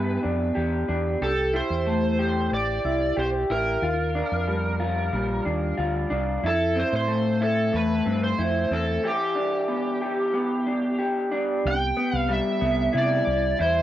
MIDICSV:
0, 0, Header, 1, 4, 480
1, 0, Start_track
1, 0, Key_signature, 0, "major"
1, 0, Tempo, 652174
1, 892, Time_signature, 4, 2, 24, 8
1, 10174, End_track
2, 0, Start_track
2, 0, Title_t, "Electric slide guitar"
2, 0, Program_c, 0, 29
2, 0, Note_on_c, 0, 71, 84
2, 152, Note_off_c, 0, 71, 0
2, 908, Note_on_c, 0, 69, 88
2, 1124, Note_off_c, 0, 69, 0
2, 1148, Note_on_c, 0, 72, 83
2, 1867, Note_off_c, 0, 72, 0
2, 1870, Note_on_c, 0, 74, 105
2, 2347, Note_off_c, 0, 74, 0
2, 2350, Note_on_c, 0, 72, 93
2, 2413, Note_off_c, 0, 72, 0
2, 2587, Note_on_c, 0, 70, 76
2, 3993, Note_off_c, 0, 70, 0
2, 4764, Note_on_c, 0, 69, 101
2, 4997, Note_off_c, 0, 69, 0
2, 5001, Note_on_c, 0, 72, 95
2, 5101, Note_off_c, 0, 72, 0
2, 5122, Note_on_c, 0, 72, 88
2, 5444, Note_off_c, 0, 72, 0
2, 5469, Note_on_c, 0, 69, 81
2, 5709, Note_on_c, 0, 71, 97
2, 5710, Note_off_c, 0, 69, 0
2, 6037, Note_off_c, 0, 71, 0
2, 6064, Note_on_c, 0, 72, 87
2, 6427, Note_on_c, 0, 69, 89
2, 6430, Note_off_c, 0, 72, 0
2, 6668, Note_off_c, 0, 69, 0
2, 6675, Note_on_c, 0, 67, 77
2, 8073, Note_off_c, 0, 67, 0
2, 8593, Note_on_c, 0, 79, 116
2, 8961, Note_off_c, 0, 79, 0
2, 8961, Note_on_c, 0, 77, 116
2, 9073, Note_on_c, 0, 76, 99
2, 9075, Note_off_c, 0, 77, 0
2, 9549, Note_off_c, 0, 76, 0
2, 9552, Note_on_c, 0, 74, 95
2, 9990, Note_off_c, 0, 74, 0
2, 10022, Note_on_c, 0, 72, 94
2, 10174, Note_off_c, 0, 72, 0
2, 10174, End_track
3, 0, Start_track
3, 0, Title_t, "Clean electric guitar"
3, 0, Program_c, 1, 27
3, 0, Note_on_c, 1, 52, 76
3, 0, Note_on_c, 1, 59, 68
3, 0, Note_on_c, 1, 62, 55
3, 0, Note_on_c, 1, 67, 62
3, 158, Note_off_c, 1, 62, 0
3, 166, Note_on_c, 1, 62, 50
3, 401, Note_off_c, 1, 67, 0
3, 404, Note_on_c, 1, 67, 63
3, 642, Note_off_c, 1, 62, 0
3, 651, Note_on_c, 1, 62, 54
3, 895, Note_off_c, 1, 67, 0
3, 898, Note_on_c, 1, 67, 58
3, 936, Note_off_c, 1, 59, 0
3, 940, Note_off_c, 1, 62, 0
3, 1129, Note_on_c, 1, 64, 55
3, 1372, Note_on_c, 1, 57, 55
3, 1533, Note_off_c, 1, 52, 0
3, 1607, Note_off_c, 1, 67, 0
3, 1610, Note_on_c, 1, 67, 61
3, 1853, Note_off_c, 1, 57, 0
3, 2089, Note_off_c, 1, 64, 0
3, 2098, Note_on_c, 1, 64, 51
3, 2328, Note_off_c, 1, 67, 0
3, 2331, Note_on_c, 1, 67, 66
3, 2568, Note_off_c, 1, 64, 0
3, 2577, Note_on_c, 1, 64, 55
3, 2815, Note_off_c, 1, 67, 0
3, 2818, Note_on_c, 1, 65, 63
3, 2864, Note_off_c, 1, 64, 0
3, 3055, Note_on_c, 1, 62, 59
3, 3294, Note_on_c, 1, 55, 55
3, 3529, Note_off_c, 1, 65, 0
3, 3532, Note_on_c, 1, 65, 62
3, 3766, Note_off_c, 1, 55, 0
3, 3775, Note_on_c, 1, 55, 68
3, 4002, Note_off_c, 1, 62, 0
3, 4010, Note_on_c, 1, 62, 49
3, 4247, Note_off_c, 1, 65, 0
3, 4250, Note_on_c, 1, 65, 68
3, 4481, Note_off_c, 1, 62, 0
3, 4490, Note_on_c, 1, 62, 62
3, 4734, Note_off_c, 1, 65, 0
3, 4737, Note_on_c, 1, 64, 61
3, 4781, Note_off_c, 1, 62, 0
3, 4784, Note_off_c, 1, 55, 0
3, 4973, Note_on_c, 1, 60, 59
3, 5210, Note_on_c, 1, 57, 57
3, 5448, Note_off_c, 1, 64, 0
3, 5451, Note_on_c, 1, 64, 61
3, 5681, Note_off_c, 1, 57, 0
3, 5690, Note_on_c, 1, 57, 67
3, 5923, Note_off_c, 1, 60, 0
3, 5931, Note_on_c, 1, 60, 53
3, 6167, Note_off_c, 1, 64, 0
3, 6170, Note_on_c, 1, 64, 63
3, 6405, Note_off_c, 1, 60, 0
3, 6414, Note_on_c, 1, 60, 60
3, 6650, Note_off_c, 1, 64, 0
3, 6650, Note_on_c, 1, 52, 66
3, 6653, Note_on_c, 1, 67, 58
3, 6700, Note_off_c, 1, 57, 0
3, 6702, Note_off_c, 1, 60, 0
3, 6884, Note_on_c, 1, 62, 57
3, 7125, Note_on_c, 1, 59, 52
3, 7370, Note_off_c, 1, 67, 0
3, 7373, Note_on_c, 1, 67, 61
3, 7604, Note_off_c, 1, 59, 0
3, 7607, Note_on_c, 1, 59, 62
3, 7840, Note_off_c, 1, 62, 0
3, 7849, Note_on_c, 1, 62, 49
3, 8083, Note_off_c, 1, 67, 0
3, 8086, Note_on_c, 1, 67, 60
3, 8320, Note_off_c, 1, 62, 0
3, 8329, Note_on_c, 1, 62, 59
3, 8618, Note_off_c, 1, 62, 0
3, 8807, Note_off_c, 1, 59, 0
3, 8807, Note_on_c, 1, 59, 62
3, 9044, Note_on_c, 1, 55, 64
3, 9226, Note_off_c, 1, 52, 0
3, 9274, Note_off_c, 1, 59, 0
3, 9283, Note_on_c, 1, 59, 62
3, 9513, Note_off_c, 1, 67, 0
3, 9516, Note_on_c, 1, 64, 70
3, 9765, Note_off_c, 1, 59, 0
3, 9999, Note_off_c, 1, 64, 0
3, 10002, Note_on_c, 1, 64, 71
3, 10174, Note_off_c, 1, 55, 0
3, 10174, Note_off_c, 1, 64, 0
3, 10174, End_track
4, 0, Start_track
4, 0, Title_t, "Fingered electric bass"
4, 0, Program_c, 2, 33
4, 0, Note_on_c, 2, 43, 82
4, 124, Note_off_c, 2, 43, 0
4, 179, Note_on_c, 2, 41, 73
4, 368, Note_off_c, 2, 41, 0
4, 416, Note_on_c, 2, 40, 83
4, 607, Note_off_c, 2, 40, 0
4, 654, Note_on_c, 2, 40, 90
4, 845, Note_off_c, 2, 40, 0
4, 891, Note_on_c, 2, 36, 84
4, 1180, Note_off_c, 2, 36, 0
4, 1251, Note_on_c, 2, 40, 73
4, 1824, Note_off_c, 2, 40, 0
4, 1850, Note_on_c, 2, 33, 81
4, 2044, Note_off_c, 2, 33, 0
4, 2093, Note_on_c, 2, 36, 74
4, 2286, Note_off_c, 2, 36, 0
4, 2334, Note_on_c, 2, 35, 82
4, 2526, Note_off_c, 2, 35, 0
4, 2574, Note_on_c, 2, 33, 84
4, 2766, Note_off_c, 2, 33, 0
4, 2812, Note_on_c, 2, 39, 90
4, 3101, Note_off_c, 2, 39, 0
4, 3177, Note_on_c, 2, 41, 88
4, 3747, Note_off_c, 2, 41, 0
4, 3774, Note_on_c, 2, 34, 93
4, 3967, Note_off_c, 2, 34, 0
4, 4016, Note_on_c, 2, 39, 81
4, 4208, Note_off_c, 2, 39, 0
4, 4257, Note_on_c, 2, 38, 90
4, 4449, Note_off_c, 2, 38, 0
4, 4497, Note_on_c, 2, 36, 80
4, 4689, Note_off_c, 2, 36, 0
4, 4734, Note_on_c, 2, 41, 90
4, 5023, Note_off_c, 2, 41, 0
4, 5096, Note_on_c, 2, 45, 82
4, 5667, Note_off_c, 2, 45, 0
4, 5695, Note_on_c, 2, 40, 84
4, 5887, Note_off_c, 2, 40, 0
4, 5933, Note_on_c, 2, 43, 84
4, 6126, Note_off_c, 2, 43, 0
4, 6170, Note_on_c, 2, 41, 85
4, 6364, Note_off_c, 2, 41, 0
4, 6408, Note_on_c, 2, 40, 85
4, 6603, Note_off_c, 2, 40, 0
4, 8575, Note_on_c, 2, 36, 100
4, 8765, Note_off_c, 2, 36, 0
4, 8928, Note_on_c, 2, 36, 99
4, 9121, Note_off_c, 2, 36, 0
4, 9285, Note_on_c, 2, 36, 101
4, 9479, Note_off_c, 2, 36, 0
4, 9526, Note_on_c, 2, 48, 96
4, 9719, Note_off_c, 2, 48, 0
4, 9766, Note_on_c, 2, 36, 88
4, 9958, Note_off_c, 2, 36, 0
4, 10008, Note_on_c, 2, 40, 90
4, 10174, Note_off_c, 2, 40, 0
4, 10174, End_track
0, 0, End_of_file